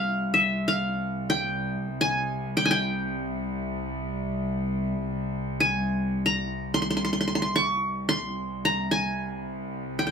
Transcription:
0.00 8.21 C2 medium
0.00 0.40 F5 medium
0.34 0.74 E5 medium
0.68 1.57 F5 medium
1.30 2.07 G5 medium
2.01 2.63 G#5 medium
2.57 2.70 G5 medium
2.65 2.77 G#5 medium
2.71 4.50 G5 medium
5.60 6.40 G#5 medium
6.26 7.00 A#5 medium
6.74 6.82 C6 medium
6.82 6.90 C6 medium
6.90 6.96 C6 medium
6.97 7.04 C6 soft
7.05 7.12 C6 medium
7.13 7.20 C6 medium
7.21 7.27 C6 medium
7.28 7.35 C6 soft
7.35 7.42 C6 medium
7.42 7.62 C6 medium
7.56 8.15 C#6 medium
8.09 8.78 C6 medium
8.23 10.11 C2 medium
8.65 9.40 A#5 medium
8.91 10.05 G#5 medium
9.99 10.06 G5 medium
10.07 10.11 G5 soft

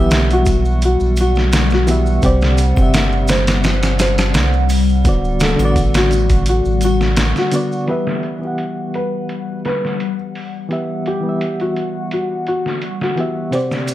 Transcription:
0.00 0.97 B1 medium
0.00 1.87 E3 loud
0.00 1.85 G3 medium
0.00 7.87 G3 medium
0.00 1.88 B3 medium
0.00 0.25 G4 medium
0.00 1.89 G4 medium
0.00 1.91 E5 loud
0.00 7.87 F#5 medium
0.10 snare loud
0.10 closed hi-hat medium
0.10 maracas soft
0.30 0.78 F#4 medium
0.30 closed hi-hat soft
0.30 maracas soft
0.46 kick loud
0.46 closed hi-hat medium
0.46 maracas medium
0.65 maracas soft
0.82 1.15 F#4 medium
0.82 closed hi-hat medium
0.82 maracas soft
1.00 2.20 B1 medium
1.00 maracas soft
1.16 closed hi-hat medium
1.16 triangle medium
1.16 maracas medium
1.21 1.67 F#4 loud
1.35 snare soft
1.35 maracas soft
1.52 snare loud
1.52 closed hi-hat medium
1.52 maracas medium
1.70 2.19 F#4 medium
1.70 snare soft
1.70 maracas soft
1.87 2.19 E3 medium
1.87 2.19 B3 medium
1.87 2.20 G4 medium
1.87 2.21 E5 loud
1.87 closed hi-hat medium
1.87 maracas medium
2.06 maracas soft
2.22 2.74 C2 loud
2.22 2.72 C3 medium
2.22 2.73 C4 medium
2.22 2.73 G4 medium
2.22 2.73 C5 medium
2.22 kick loud
2.22 closed hi-hat medium
2.22 maracas soft
2.26 2.74 D5 loud
2.41 snare medium
2.41 maracas soft
2.58 closed hi-hat medium
2.58 maracas medium
2.74 4.36 G1 loud
2.74 5.00 C3 medium
2.74 5.01 C4 medium
2.74 kick medium
2.74 triangle medium
2.74 maracas soft
2.80 5.03 G4 medium
2.80 5.04 E5 medium
2.93 snare loud
2.93 closed hi-hat medium
2.93 maracas medium
3.12 maracas soft
3.28 3.94 C5 medium
3.28 snare loud
3.28 closed hi-hat medium
3.28 maracas medium
3.47 snare loud
3.47 closed hi-hat medium
3.47 maracas soft
3.63 snare loud
3.63 closed hi-hat medium
3.63 maracas soft
3.83 snare loud
3.83 closed hi-hat medium
3.83 maracas soft
3.99 4.49 C5 medium
3.99 snare loud
3.99 closed hi-hat medium
3.99 maracas medium
4.18 snare loud
4.18 closed hi-hat medium
4.18 maracas soft
4.34 5.07 C2 medium
4.34 snare loud
4.34 closed hi-hat medium
4.34 maracas soft
4.53 maracas soft
4.69 open hi-hat medium
4.69 triangle medium
4.69 maracas medium
4.89 maracas soft
5.05 5.56 D1 medium
5.05 5.55 D3 medium
5.05 5.55 B3 medium
5.05 5.56 F#4 medium
5.05 kick loud
5.05 closed hi-hat medium
5.05 maracas soft
5.09 5.57 D5 medium
5.25 maracas soft
5.40 5.90 A4 medium
5.40 snare loud
5.40 closed hi-hat medium
5.40 maracas medium
5.56 6.62 A1 loud
5.56 7.47 D3 loud
5.56 7.48 B3 medium
5.56 closed hi-hat soft
5.56 triangle medium
5.56 maracas soft
5.62 7.50 F#4 medium
5.62 7.51 D5 loud
5.76 kick medium
5.76 closed hi-hat medium
5.76 maracas medium
5.94 6.43 F#4 medium
5.94 snare loud
5.94 closed hi-hat medium
5.94 maracas soft
6.11 closed hi-hat soft
6.11 maracas medium
6.30 kick medium
6.30 closed hi-hat medium
6.30 maracas soft
6.46 6.80 F#4 medium
6.46 closed hi-hat medium
6.46 maracas soft
6.65 7.17 A1 medium
6.65 maracas soft
6.81 7.32 F#4 medium
6.81 closed hi-hat medium
6.81 triangle medium
6.81 maracas medium
7.01 snare medium
7.01 maracas soft
7.17 7.34 A1 medium
7.17 snare loud
7.17 closed hi-hat medium
7.17 maracas soft
7.36 7.84 F#4 medium
7.36 snare soft
7.36 maracas soft
7.52 7.84 D3 medium
7.52 7.84 B3 medium
7.52 7.85 F#4 medium
7.52 closed hi-hat medium
7.52 maracas medium
7.56 7.85 D5 loud
7.72 maracas soft
7.87 8.37 E3 medium
7.87 13.94 G3 medium
7.87 8.37 B3 medium
7.87 8.38 G4 medium
7.87 8.37 B4 medium
7.87 13.94 F#5 medium
7.87 closed hi-hat medium
7.91 8.39 E5 medium
8.07 snare soft
8.23 closed hi-hat medium
8.39 10.65 E3 medium
8.39 10.66 B3 medium
8.45 10.68 G4 medium
8.45 10.69 F#5 medium
8.58 closed hi-hat medium
8.94 9.58 B4 medium
8.94 closed hi-hat medium
9.29 closed hi-hat medium
9.65 10.13 B4 medium
9.65 snare soft
9.65 closed hi-hat medium
9.85 snare soft
10.00 closed hi-hat medium
10.35 open hi-hat medium
10.68 11.19 E3 medium
10.68 11.20 B3 medium
10.68 11.20 G4 medium
10.68 closed hi-hat medium
10.73 11.21 E5 medium
11.06 11.55 G4 medium
11.06 closed hi-hat medium
11.21 13.11 E3 medium
11.21 13.13 B3 medium
11.26 13.14 G3 medium
11.26 13.16 E5 medium
11.41 closed hi-hat medium
11.60 12.07 F#4 medium
11.60 closed hi-hat soft
11.76 closed hi-hat medium
12.11 12.44 F#4 medium
12.11 closed hi-hat medium
12.47 12.96 F#4 medium
12.47 closed hi-hat medium
12.66 snare soft
12.82 closed hi-hat medium
13.01 13.48 F#4 medium
13.01 snare soft
13.16 13.48 E3 medium
13.16 13.49 B3 medium
13.16 13.50 G4 medium
13.16 closed hi-hat medium
13.20 13.50 E5 medium
13.51 13.94 C3 medium
13.51 13.94 C4 medium
13.51 13.94 G4 medium
13.51 13.94 C5 medium
13.51 closed hi-hat medium
13.51 maracas soft
13.55 13.94 D5 loud
13.71 snare soft
13.71 maracas soft
13.87 closed hi-hat medium
13.87 maracas medium

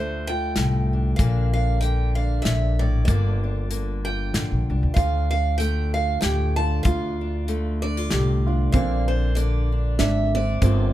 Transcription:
0.00 0.53 D2 medium
0.00 1.19 D2 medium
0.00 1.18 D3 medium
0.00 1.17 A3 soft
0.00 0.93 D4 medium
0.00 0.29 F4 medium
0.00 0.26 C5 medium
0.27 1.20 F4 medium
0.27 1.14 G5 medium
0.56 1.16 C2 medium
0.56 1.18 A2 medium
0.56 snare medium
0.56 closed hi-hat medium
0.93 1.21 D4 medium
1.16 2.41 A#1 medium
1.16 1.82 A#2 medium
1.16 1.81 D3 medium
1.16 1.82 A#3 medium
1.16 1.51 F5 medium
1.16 kick medium
1.16 closed hi-hat medium
1.21 1.54 D4 medium
1.54 2.18 D4 medium
1.54 1.80 F5 medium
1.81 3.07 D3 medium
1.81 3.05 A#3 medium
1.81 2.15 G5 medium
1.81 closed hi-hat soft
2.15 3.10 D4 medium
2.15 2.42 F5 medium
2.42 3.05 A#1 medium
2.42 2.79 A#2 medium
2.42 2.81 E5 medium
2.42 snare medium
2.42 closed hi-hat medium
2.79 3.08 A2 medium
2.79 3.04 D5 medium
3.05 4.30 G1 medium
3.05 4.93 G2 medium
3.05 3.69 D3 medium
3.05 3.70 A#3 medium
3.05 4.08 D5 medium
3.05 kick medium
3.05 closed hi-hat soft
3.10 3.43 D4 medium
3.10 4.07 F4 medium
3.44 4.70 D4 medium
3.70 4.34 D3 medium
3.70 4.93 A#3 medium
3.70 closed hi-hat soft
4.05 4.97 F4 medium
4.05 4.94 G5 medium
4.34 4.50 A1 medium
4.34 4.94 D3 medium
4.34 snare medium
4.34 closed hi-hat soft
4.51 4.68 A#1 medium
4.70 4.82 C2 medium
4.70 5.32 D4 medium
4.83 4.95 D2 medium
4.94 6.83 D2 medium
4.94 6.18 D2 medium
4.94 5.58 F4 medium
4.94 5.95 F4 medium
4.94 5.28 F5 medium
4.94 kick medium
4.94 closed hi-hat soft
5.31 6.58 D4 soft
5.31 5.57 F5 medium
5.58 7.47 D3 medium
5.58 6.82 A3 medium
5.58 5.92 G5 medium
5.58 closed hi-hat soft
5.94 6.84 F4 medium
5.94 6.20 F5 medium
6.21 6.82 D2 medium
6.21 6.85 A2 medium
6.21 6.57 G4 medium
6.21 6.56 G5 medium
6.21 snare medium
6.21 closed hi-hat medium
6.56 7.21 D4 medium
6.56 6.84 F4 medium
6.56 6.83 A5 medium
6.83 8.73 D2 medium
6.83 8.07 D2 medium
6.83 7.83 F4 medium
6.83 7.47 F4 medium
6.83 7.82 F5 medium
6.83 kick medium
6.83 closed hi-hat soft
7.21 7.84 D4 medium
7.48 8.74 D3 medium
7.48 8.71 A3 medium
7.48 closed hi-hat soft
7.82 7.97 D4 medium
7.82 8.72 D5 medium
7.97 8.74 F4 medium
8.10 8.71 C2 medium
8.10 8.73 A2 medium
8.10 8.46 G4 medium
8.10 snare medium
8.10 closed hi-hat medium
8.47 8.76 D4 medium
8.47 8.73 F4 medium
8.72 9.95 A#1 medium
8.72 9.37 A#2 medium
8.72 9.34 D3 medium
8.72 9.36 A#3 medium
8.72 9.36 C4 medium
8.72 9.09 D4 medium
8.72 9.06 F5 medium
8.72 kick medium
8.72 closed hi-hat soft
9.08 9.72 D4 medium
9.08 9.37 C5 medium
9.35 10.61 D3 medium
9.35 10.59 A#3 medium
9.35 9.95 D5 medium
9.35 closed hi-hat soft
9.72 10.34 D4 medium
9.99 10.59 G#1 medium
9.99 10.59 F2 medium
9.99 10.34 D4 medium
9.99 10.32 E5 medium
9.99 snare medium
9.99 closed hi-hat soft
10.35 10.61 C4 medium
10.35 10.63 D4 medium
10.35 10.93 D5 medium
10.61 10.93 G1 medium
10.61 10.93 G2 medium
10.61 10.93 D3 medium
10.61 10.93 A#3 medium
10.61 10.93 C4 medium
10.61 10.93 D4 medium
10.61 10.93 F4 medium
10.61 kick medium
10.61 closed hi-hat soft

